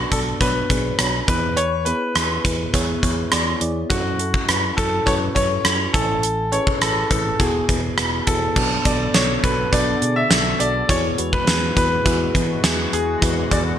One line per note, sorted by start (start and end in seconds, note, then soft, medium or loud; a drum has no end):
0.00 0.11 B3 medium
0.00 0.12 D4 medium
0.00 0.12 F#4 medium
0.00 0.14 F#4 medium
0.00 1.29 B4 medium
0.00 0.12 D5 medium
0.11 0.33 B1 medium
0.11 0.34 B3 medium
0.11 0.34 D4 medium
0.11 0.34 F#4 medium
0.11 0.18 A4 medium
0.11 0.34 D5 medium
0.11 kick medium
0.11 closed hi-hat medium
0.40 0.62 B1 medium
0.40 0.63 B3 medium
0.40 0.63 D4 medium
0.40 0.63 F#4 medium
0.40 0.95 B4 medium
0.40 0.63 C#5 loud
0.40 kick medium
0.40 closed hi-hat medium
0.70 0.91 B1 medium
0.70 0.92 B3 medium
0.70 0.92 D4 medium
0.70 0.92 F#4 medium
0.70 0.92 G#4 medium
0.70 kick medium
0.70 closed hi-hat medium
0.99 1.20 B1 medium
0.99 1.21 B3 medium
0.99 1.21 D4 medium
0.99 1.21 F#4 medium
0.99 1.21 C#5 medium
0.99 cross-stick medium
0.99 closed hi-hat medium
1.28 1.91 E2 medium
1.28 1.75 B3 medium
1.28 1.75 E4 medium
1.28 1.75 G#4 medium
1.28 1.58 B4 medium
1.28 1.75 B4 medium
1.28 kick loud
1.28 closed hi-hat medium
1.57 1.84 C#5 loud
1.57 closed hi-hat medium
1.85 2.08 B3 medium
1.85 2.09 E4 medium
1.85 2.09 G#4 medium
1.85 3.57 B4 loud
1.85 2.09 B4 medium
1.85 closed hi-hat medium
2.15 2.37 E2 medium
2.15 2.37 B3 medium
2.15 2.38 E4 medium
2.15 2.38 G#4 medium
2.15 2.38 B4 medium
2.15 cross-stick medium
2.15 closed hi-hat medium
2.44 2.66 E2 medium
2.44 2.66 B3 medium
2.44 2.67 E4 medium
2.44 2.67 G#4 medium
2.44 2.67 B4 medium
2.44 kick medium
2.44 closed hi-hat medium
2.73 2.95 E2 medium
2.73 2.96 B3 loud
2.73 2.96 E4 loud
2.73 2.96 G#4 loud
2.73 2.96 C#5 loud
2.73 kick medium
2.73 closed hi-hat medium
3.02 3.24 E2 medium
3.02 3.25 B3 medium
3.02 3.25 E4 medium
3.02 3.25 G#4 medium
3.02 3.25 C#5 medium
3.02 kick medium
3.02 closed hi-hat medium
3.31 3.53 E2 medium
3.31 3.54 B3 medium
3.31 3.54 E4 medium
3.31 3.54 G#4 medium
3.31 3.54 D5 medium
3.31 cross-stick loud
3.31 closed hi-hat medium
3.60 3.82 E2 loud
3.60 3.83 B3 medium
3.60 3.83 E4 medium
3.60 3.83 G#4 medium
3.60 3.83 D5 medium
3.60 closed hi-hat medium
3.90 4.32 F#2 loud
3.90 4.12 C#4 medium
3.90 4.12 E4 medium
3.90 4.80 F#4 medium
3.90 4.13 F#4 medium
3.90 4.13 A4 loud
3.90 kick loud
3.90 closed hi-hat medium
4.19 4.41 C#4 medium
4.19 4.41 E4 medium
4.19 4.41 F#4 medium
4.19 4.42 A4 medium
4.19 closed hi-hat medium
4.34 kick medium
4.48 4.70 F#2 medium
4.48 4.70 C#4 medium
4.48 4.70 E4 medium
4.48 4.71 F#4 medium
4.48 4.71 B4 medium
4.48 cross-stick medium
4.48 closed hi-hat medium
4.77 4.99 F#2 medium
4.77 4.99 C#4 medium
4.77 5.00 E4 medium
4.77 5.00 F#4 medium
4.77 5.07 A4 medium
4.77 5.00 A4 medium
4.77 kick medium
4.77 closed hi-hat medium
5.06 5.28 F#2 medium
5.06 5.28 C#4 medium
5.06 5.29 E4 medium
5.06 5.29 F#4 medium
5.06 5.29 B4 loud
5.06 5.13 C#5 medium
5.06 kick medium
5.06 closed hi-hat medium
5.35 5.57 F#2 medium
5.35 5.58 C#4 medium
5.35 5.58 E4 medium
5.35 5.58 F#4 medium
5.35 5.58 B4 medium
5.35 5.95 C#5 medium
5.35 kick medium
5.35 closed hi-hat medium
5.64 5.86 F#2 medium
5.64 5.87 C#4 medium
5.64 5.87 E4 medium
5.64 5.87 F#4 medium
5.64 5.87 A4 medium
5.64 cross-stick loud
5.64 closed hi-hat medium
5.93 6.57 A1 medium
5.93 6.40 C#4 medium
5.93 6.41 E4 medium
5.93 6.54 A4 medium
5.93 6.41 A4 medium
5.93 6.41 G#5 medium
5.93 kick medium
5.93 closed hi-hat medium
6.23 closed hi-hat medium
6.52 6.74 C#4 medium
6.52 6.74 E4 medium
6.52 6.75 G#4 medium
6.52 6.75 B4 medium
6.52 6.82 C#5 medium
6.52 closed hi-hat medium
6.67 kick medium
6.81 7.02 A1 medium
6.81 7.03 C#4 medium
6.81 7.04 E4 medium
6.81 7.04 G#4 medium
6.81 7.09 A4 medium
6.81 7.04 B4 medium
6.81 cross-stick loud
6.81 closed hi-hat medium
7.10 7.32 A1 medium
7.10 7.33 C#4 medium
7.10 7.33 E4 medium
7.10 7.33 G#4 medium
7.10 7.41 A4 medium
7.10 7.33 B4 medium
7.10 kick medium
7.10 closed hi-hat medium
7.39 7.61 E1 medium
7.39 7.62 B3 medium
7.39 7.62 E4 medium
7.39 7.62 F#4 medium
7.39 7.94 G#4 medium
7.39 7.62 G#4 medium
7.39 kick medium
7.39 closed hi-hat medium
7.68 7.90 E1 medium
7.68 7.91 B3 medium
7.68 7.91 E4 medium
7.68 7.91 F#4 medium
7.68 7.91 B4 medium
7.68 kick medium
7.68 closed hi-hat medium
7.98 8.19 E1 medium
7.98 8.20 B3 medium
7.98 8.20 E4 medium
7.98 8.20 F#4 medium
7.98 8.21 B4 medium
7.98 cross-stick loud
7.98 closed hi-hat medium
8.27 8.48 E1 medium
8.27 8.49 B3 medium
8.27 8.49 E4 medium
8.27 8.49 F#4 medium
8.27 8.50 G#4 medium
8.27 8.87 A4 medium
8.27 kick medium
8.27 closed hi-hat medium
8.56 8.77 B1 loud
8.56 10.87 D3 medium
8.56 8.78 B3 medium
8.56 10.87 B3 medium
8.56 8.78 D4 medium
8.56 8.78 F#4 medium
8.56 10.87 A4 medium
8.56 8.79 A4 medium
8.56 kick medium
8.56 crash medium
8.85 9.07 B1 medium
8.85 9.07 B3 medium
8.85 9.07 D4 medium
8.85 9.08 F#4 medium
8.85 9.08 A4 medium
8.85 9.15 D5 medium
8.85 kick medium
8.85 closed hi-hat medium
9.14 9.36 B1 medium
9.14 9.36 B3 medium
9.14 9.37 D4 medium
9.14 9.37 F#4 medium
9.14 9.37 A4 medium
9.14 9.44 C#5 medium
9.14 snare loud
9.14 closed hi-hat medium
9.43 9.65 B1 medium
9.43 9.66 B3 medium
9.43 9.66 D4 medium
9.43 9.66 F#4 medium
9.43 9.66 A4 medium
9.43 9.74 B4 medium
9.43 kick medium
9.43 closed hi-hat medium
9.72 9.94 B1 medium
9.72 9.95 B3 medium
9.72 9.95 D4 medium
9.72 9.95 F#4 medium
9.72 9.95 A4 loud
9.72 10.18 D5 medium
9.72 kick medium
9.72 closed hi-hat medium
10.01 10.23 B2 medium
10.01 10.24 B3 medium
10.01 10.24 D4 medium
10.01 10.24 F#4 medium
10.01 10.24 G#4 medium
10.01 closed hi-hat medium
10.16 10.61 E5 medium
10.30 10.52 B1 loud
10.30 10.53 B3 medium
10.30 10.53 D4 medium
10.30 10.53 F#4 medium
10.30 10.53 A4 medium
10.30 snare loud
10.30 closed hi-hat medium
10.60 10.81 B1 medium
10.60 10.82 B3 medium
10.60 10.82 D4 medium
10.60 10.82 F#4 medium
10.60 10.82 A4 medium
10.60 10.90 D5 medium
10.60 closed hi-hat medium
10.88 11.10 E2 loud
10.88 13.79 E3 medium
10.88 13.79 G#3 medium
10.88 11.11 B3 medium
10.88 11.11 E4 medium
10.88 11.11 F#4 medium
10.88 13.79 F#4 medium
10.88 11.12 G#4 loud
10.88 11.34 C#5 medium
10.88 kick loud
10.88 closed hi-hat medium
11.17 11.39 E2 medium
11.17 11.40 B3 medium
11.17 11.40 E4 medium
11.17 11.40 F#4 medium
11.17 11.41 B4 medium
11.17 closed hi-hat medium
11.33 11.75 B4 medium
11.33 kick medium
11.47 11.69 E2 medium
11.47 11.69 B3 medium
11.47 11.69 E4 medium
11.47 11.70 F#4 medium
11.47 11.70 G#4 medium
11.47 snare loud
11.47 closed hi-hat medium
11.76 11.98 E2 medium
11.76 11.98 B3 medium
11.76 11.99 E4 medium
11.76 11.99 F#4 medium
11.76 11.99 G#4 medium
11.76 12.97 B4 loud
11.76 kick medium
11.76 closed hi-hat medium
12.05 12.27 E2 medium
12.05 12.27 B3 medium
12.05 12.28 E4 medium
12.05 12.28 F#4 medium
12.05 12.28 G#4 loud
12.05 kick medium
12.05 closed hi-hat medium
12.34 12.56 E3 medium
12.34 12.57 B3 medium
12.34 12.57 E4 medium
12.34 12.57 F#4 medium
12.34 12.57 G#4 medium
12.34 kick medium
12.34 closed hi-hat medium
12.63 12.85 E2 medium
12.63 12.86 B3 medium
12.63 12.86 E4 medium
12.63 12.86 F#4 medium
12.63 12.86 G#4 medium
12.63 snare loud
12.63 closed hi-hat medium
12.92 13.14 E2 loud
12.92 13.15 B3 medium
12.92 13.15 E4 medium
12.92 13.15 F#4 medium
12.92 13.53 G#4 medium
12.92 13.15 G#4 medium
12.92 closed hi-hat medium
13.21 13.43 E2 loud
13.21 13.44 B3 medium
13.21 13.44 E4 medium
13.21 13.44 F#4 medium
13.21 13.44 B4 loud
13.21 kick loud
13.21 closed hi-hat medium
13.51 13.72 E2 medium
13.51 13.73 B3 medium
13.51 13.73 E4 medium
13.51 13.74 F#4 medium
13.51 13.74 G#4 medium
13.51 13.58 D5 medium
13.51 kick medium
13.51 closed hi-hat medium